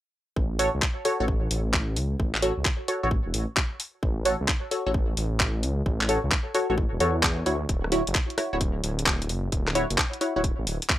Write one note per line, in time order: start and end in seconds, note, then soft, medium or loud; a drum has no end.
0.36 0.69 A1 loud
0.36 kick loud
0.59 0.69 F#4 loud
0.59 0.69 A4 medium
0.59 0.69 C#5 loud
0.59 open hi-hat loud
0.74 0.80 C#2 loud
0.82 kick loud
0.82 clap loud
1.05 1.18 F#4 medium
1.05 1.18 A4 medium
1.05 1.18 C#5 medium
1.05 open hi-hat medium
1.20 1.48 A1 medium
1.20 1.25 F#4 medium
1.20 1.25 A4 medium
1.20 1.25 C#5 medium
1.28 kick loud
1.51 1.98 A1 medium
1.51 open hi-hat loud
1.74 kick loud
1.74 clap loud
1.96 2.16 C#2 medium
1.96 open hi-hat medium
2.20 2.52 A1 loud
2.20 kick loud
2.35 clap medium
2.42 2.53 F#4 loud
2.42 2.53 A4 medium
2.42 2.53 C#5 loud
2.42 open hi-hat loud
2.58 2.63 C#2 loud
2.65 kick loud
2.65 clap loud
2.88 3.01 F#4 medium
2.88 3.01 A4 medium
2.88 3.01 C#5 medium
2.88 open hi-hat medium
3.03 3.19 A1 medium
3.03 3.09 F#4 medium
3.03 3.09 A4 medium
3.03 3.09 C#5 medium
3.11 kick loud
3.26 3.32 E1 medium
3.34 3.46 A1 medium
3.34 open hi-hat loud
3.57 kick loud
3.57 clap loud
3.80 open hi-hat medium
4.03 4.35 A1 medium
4.03 kick loud
4.25 4.36 F#4 loud
4.25 4.36 A4 medium
4.25 4.36 C#5 loud
4.25 open hi-hat loud
4.41 4.47 C#2 loud
4.48 kick loud
4.48 clap loud
4.71 4.84 F#4 medium
4.71 4.84 A4 medium
4.71 4.84 C#5 medium
4.71 open hi-hat medium
4.86 5.14 A1 medium
4.86 4.92 F#4 medium
4.86 4.92 A4 medium
4.86 4.92 C#5 medium
4.94 kick loud
5.17 5.64 A1 medium
5.17 open hi-hat loud
5.40 kick loud
5.40 clap loud
5.63 5.82 C#2 medium
5.63 open hi-hat medium
5.86 6.18 A1 loud
5.86 kick loud
6.01 clap medium
6.09 6.19 F#4 loud
6.09 6.19 A4 medium
6.09 6.19 C#5 loud
6.09 open hi-hat loud
6.24 6.30 C#2 loud
6.32 kick loud
6.32 clap loud
6.55 6.68 F#4 medium
6.55 6.68 A4 medium
6.55 6.68 C#5 medium
6.55 open hi-hat medium
6.70 6.85 A1 medium
6.70 6.75 F#4 medium
6.70 6.75 A4 medium
6.70 6.75 C#5 medium
6.78 kick loud
6.93 6.99 E1 medium
7.00 7.43 E2 medium
7.00 7.16 F#4 medium
7.00 7.16 A4 medium
7.00 7.16 C#5 loud
7.00 open hi-hat medium
7.23 kick loud
7.23 clap loud
7.46 7.65 D2 loud
7.46 7.56 E4 medium
7.46 7.56 F#4 medium
7.46 7.56 C#5 loud
7.46 open hi-hat medium
7.69 8.01 D1 medium
7.69 kick loud
7.69 closed hi-hat medium
7.84 cross-stick medium
7.92 8.02 E4 loud
7.92 8.02 F#4 medium
7.92 8.02 C#5 loud
7.92 open hi-hat loud
8.07 8.13 F#1 loud
8.07 closed hi-hat medium
8.15 kick loud
8.15 clap loud
8.30 closed hi-hat soft
8.38 8.51 E4 medium
8.38 8.51 F#4 medium
8.38 8.51 C#5 medium
8.38 cross-stick medium
8.38 open hi-hat medium
8.53 8.81 D1 medium
8.53 8.58 E4 medium
8.53 8.58 F#4 medium
8.53 8.58 C#5 medium
8.61 kick loud
8.61 closed hi-hat medium
8.84 9.31 D1 medium
8.84 open hi-hat medium
8.99 closed hi-hat medium
9.06 kick loud
9.06 clap loud
9.22 closed hi-hat soft
9.29 9.49 F#1 medium
9.29 open hi-hat medium
9.52 9.84 D1 medium
9.52 kick loud
9.52 closed hi-hat medium
9.68 cross-stick medium
9.68 clap medium
9.75 9.85 E4 loud
9.75 9.85 F#4 medium
9.75 9.85 C#5 loud
9.75 open hi-hat loud
9.90 9.96 F#1 loud
9.90 closed hi-hat medium
9.98 kick loud
9.98 clap loud
10.13 closed hi-hat soft
10.21 10.34 E4 medium
10.21 10.34 F#4 medium
10.21 10.34 C#5 medium
10.21 open hi-hat medium
10.36 10.52 D1 medium
10.36 10.41 E4 medium
10.36 10.41 F#4 medium
10.36 10.41 C#5 medium
10.44 kick loud
10.44 closed hi-hat medium
10.59 10.65 A1 medium
10.67 10.78 D1 loud
10.67 open hi-hat loud
10.82 closed hi-hat medium
10.90 kick loud
10.90 clap loud